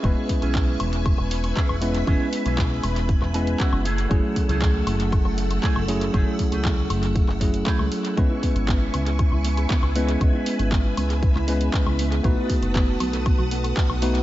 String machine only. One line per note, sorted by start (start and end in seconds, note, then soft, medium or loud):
0.00 3.82 B4 medium
0.00 3.82 E5 medium
0.00 5.85 G#5 medium
0.00 1.80 C#6 medium
1.82 3.83 B5 medium
3.85 8.13 A3 medium
3.85 8.13 F#5 medium
3.85 8.13 E6 medium
8.18 14.23 B4 medium
8.18 12.21 E5 medium
8.18 12.21 G#5 medium
8.18 10.19 C#6 medium
10.22 12.23 B5 medium
12.24 14.23 F#5 medium
12.24 14.23 A5 medium
12.24 14.23 D#6 medium